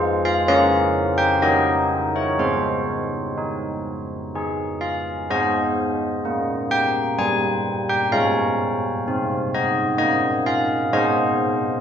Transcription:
church bells
Already playing: F3 F4 G#4 C5
0.25 F5
0.48 C#4 G#4 A#4 F5
1.18 G5
1.42 D#4 G4 A#4 D#5
2.16 C#5
2.39 G#3 C5
3.38 D#4
4.35 D#4 G#4
4.81 F5
5.30 G#3 C5 D#5
6.25 A#3
6.71 G5
7.19 G3 G#5
7.89 G5
8.12 G#3 C#5 F5
9.08 C4
9.54 D#5
9.98 A#3 D#5
10.46 F5
10.93 G#3 C5 D#5

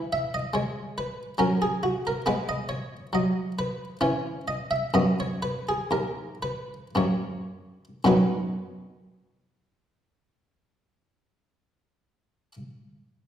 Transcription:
harpsichord
Already playing: E3 E4 B4
0.13 E5
0.34 D#5
0.54 G#3 C#5
0.98 B4
1.38 F#3 C#4 A#4
1.62 G#4
1.83 F#4
2.07 A#4
2.26 G#3 B3 B4
2.49 D#5
2.69 C#5
3.13 F#3 D#5
3.59 B4
4.01 E3 C#4 C#5
4.48 D#5
4.71 E5
4.94 F#2 B3 D#5
5.20 C#5
5.42 B4
5.69 G#4
5.91 D#2 A#4
6.43 B4
6.95 F#2 A#3 C#5
8.04 B1 F#2 F#3 B3 D#4 F#4 B4

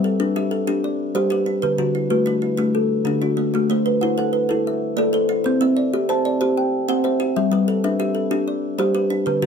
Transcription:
kalimba
Already playing: G3 B4
0.04 A4
0.20 D4 B4
0.36 G4 E5
0.51 A4
0.67 D4 G4
0.84 D5
1.15 G3 G4 C5
1.30 G4 B4
1.46 D4
1.62 D3 B4
1.78 D3 F#4
1.95 E4
2.10 A3 F#4 B4
2.26 D4 B4
2.42 E4
2.57 A3 D4
2.75 A4
3.05 D3 D4 G4
3.22 D4 F#4
3.37 A3
3.54 A3 F#4
3.70 A3 C5
3.86 B4
4.01 E4 C5 F#5
4.18 A4 F#5
4.33 B4
4.49 E4 A4
4.67 E5
4.97 A3 A4 D5
5.13 A4 C5
5.29 E4
5.44 C4 C5
5.61 C4 E5
5.77 D5
5.93 G4 E5
6.09 C5 A5
6.25 D5
6.41 G4 C5
6.57 G5
6.88 C4 C5 F#5
7.04 C5 E5
7.20 G4
7.36 G3 E5
7.52 G3 B4
7.68 A4
7.84 D4 B4 E5
8.00 G4 E5
8.15 A4
8.31 D4 G4
8.48 D5
8.79 G3 G4 C5
8.95 G4 B4
9.10 D4
9.26 D3 B4
9.42 D3 F#4

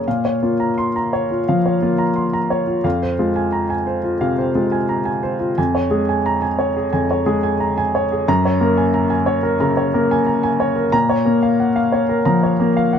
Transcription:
upright piano
0.08 A#2 F5
0.25 C#5
0.42 A#3 F4
0.60 A#5
0.78 C6
0.96 A#5
1.13 C#5
1.31 F4
1.48 F3 F5
1.66 C#5
1.82 A#3 F4
1.98 A#5
2.16 C6
2.33 A#5
2.50 C#5
2.67 F4
2.84 F2 F5
3.02 C5
3.19 G#3 F4
3.36 G#5
3.52 A#5
3.70 G#5
3.87 C5
4.04 F4
4.21 C3 F5
4.38 C5
4.55 G#3 F4
4.72 G#5
4.89 A#5
5.05 G#5
5.23 C5
5.40 F4
5.58 F2 G#5
5.75 C#5
5.91 G#3 G#4
6.09 G#5
6.26 A#5
6.42 G#5
6.59 C#5
6.77 G#4
6.93 F2 G#5
7.11 C#5
7.26 G#3 G#4
7.43 G#5
7.60 A#5
7.78 G#5
7.95 C#5
8.12 G#4
8.28 F#2 A#5
8.45 C#5
8.60 A#3 A#4
8.77 G#5
8.94 A#5
9.10 G#5
9.26 C#5
9.43 A#4
9.60 C#3 A#5
9.77 C#5
9.94 A#3 A#4
10.11 G#5
10.26 A#5
10.43 G#5
10.60 C#5
10.76 A#4
10.92 A#2 A#5
11.09 C#5
11.25 A#3 A#4
11.43 F5
11.60 F#5
11.76 F5
11.92 C#5
12.09 A#4
12.25 F3 A#5
12.43 C#5
12.60 A#3 A#4
12.77 F5
12.93 F#5

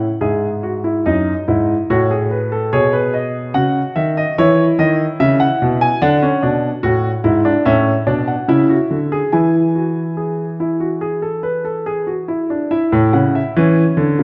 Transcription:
grand piano
Already playing: F#5
0.21 G#2 G#4 E5
0.63 F#4
0.84 E4
1.06 F#2 D#4 D#5
1.48 G#2 E4
1.90 A2 F#4 C#5
2.11 G#4
2.31 B4
2.52 A4
2.73 B2 G#4 C#5
2.93 B4
3.14 D#5
3.54 C#3 F#4 F#5
3.96 D#3 E5
4.17 D#5
4.38 E3 E4 C#5
4.79 D#3 D#5
5.20 C#3 E5
5.40 F#5
5.62 B2
5.81 G#5
6.02 D3 D4 F#5
6.22 C#4
6.43 B2 D4
6.83 A2 F#4
7.24 G#2 E4
7.45 D4
7.65 A2 C#4 E5
8.07 B2 D4 D5
8.28 F#5
8.48 C#3 E4 E5
8.69 F#4
8.90 D3
9.12 G#4
9.32 E3 E4 G#5
9.75 F#4
10.17 G#4
10.60 E4
10.80 F#4
11.01 G#4
11.22 A4
11.43 B4
11.65 A4
11.86 G#4
12.07 F#4
12.28 E4
12.50 D4
12.71 E4 E5
12.92 A2
13.13 C#3 F#5
13.35 E5
13.56 E3 C#4
13.97 D3
14.19 C#3

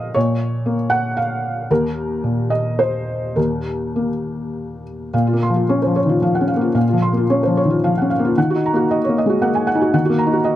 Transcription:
felt piano
Already playing: A#2 F3 C5 D#5 F5
0.15 A#2 C#5
0.66 A#3
0.90 F#5
1.17 F5
1.71 D#2 A#4
2.24 A#2
2.50 D#5
2.79 C5
3.36 D#2 A#4
3.96 A#3
5.14 A#2 F5
5.27 F4
5.33 A#3
5.43 C6
5.50 F3
5.56 F4
5.69 C#4 C#5
5.82 C5
5.86 F3
5.96 C#5
6.06 D#3 F4
6.22 F3 F5
6.35 F#5
6.41 C#4
6.48 F5
6.56 A#3
6.61 F4
6.75 A#2 F5
6.89 F4
6.93 F3
7.02 C6
7.13 A#3
7.17 F4
7.30 C#4 C#5
7.43 C5
7.47 F3
7.57 C#5
7.65 D#3
7.70 F4
7.84 F3 F5
7.98 C#4 F#5
8.10 F5
8.19 A#3
8.25 F4
8.38 D#3 F#5
8.50 F#4
8.55 D#4
8.66 A#5
8.73 A#3 F#4
8.91 D#5
9.04 C#5
9.09 A#3
9.18 D#5
9.26 G#3 F#4
9.41 A#3 F#5
9.55 G#5
9.67 F#5
9.75 D#4
9.81 F#4
9.94 D#3 F#5
10.05 F#4
10.09 A#3
10.18 A#5
10.26 D#4
10.33 F#4
10.45 D#5

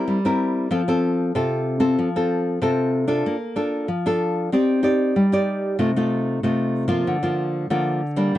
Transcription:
nylon-string guitar
Already playing: C4 E4 A#4
0.08 G3
0.25 C4 E4 A#4
0.71 F3 C4 F4 A4
0.88 C4 F4 A4
1.35 C3 C4 F4 A4
1.80 C4 F4 A4
1.99 F3
2.16 C4 F4 A4
2.62 C3 C4 F4 A4
3.08 D4 F4 A4
3.26 A#3
3.56 D4 F4 A4
3.88 F3
4.06 D4 F4 A4
4.52 C4 D#4 G4 D5
4.83 D#4 G4 D5
5.16 G3
5.32 D#4 G4 D5
5.79 C3 A3 D#4 F4
5.96 A3 D#4 F4
6.43 C3 A3 D#4 F4
6.88 F3 A#3 F4
7.07 D3
7.23 F3 A#3 F4
7.70 D3 F3 A#3 F4
8.16 G3 A#3 D4

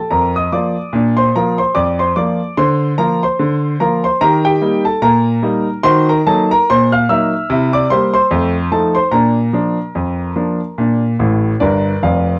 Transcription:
grand piano
Already playing: A4 A5
0.11 F2 A#4 A#5
0.36 D#5 D#6
0.53 F3 A#3 F4 D5 D6
0.93 A#2 D4
1.17 C5 C6
1.36 F3 A#3 F4 A#4 A#5
1.58 C5 C6
1.75 F2 D5 D6
2.00 C5 C6
2.16 F3 A#3 F4 D5 D6
2.58 D3 C5 C6
2.98 F3 A#3 F4 A#4 A#5
3.23 C5 C6
3.39 D3
3.80 F3 A#3 F4 A#4 A#5
4.04 C5 C6
4.21 D#3 G4 A#4 A#5
4.45 G4 G5
4.61 G3 A#3 D#4
4.85 A4 A5
5.02 A#2 A#4 A#5
5.42 G3 A#3 D#4
5.83 D#3 F#4 C5 C6
6.09 A#4 A#5
6.26 F#3 A#3 D#4 A4 A5
6.51 A#4 A#5
6.69 A#2 C5 C6
6.92 F5 F6
7.09 F#3 A#3 D#4 E5 E6
7.50 C3 E4
7.73 D5 D6
7.90 G3 A#3 G4 C5 C6
8.14 C5 C6
8.31 F2 A3
8.71 F3 A3 D#4 A4 A5
8.94 C5 C6
9.11 A#2 D4 A#4 A#5
9.53 F3 A#3 D4
9.95 F2
10.36 F3 A#3 D4
10.78 A#2 D4
11.20 A1 A2
11.60 G1 G2 A#4 D5
12.02 F1 F2 D5 F5

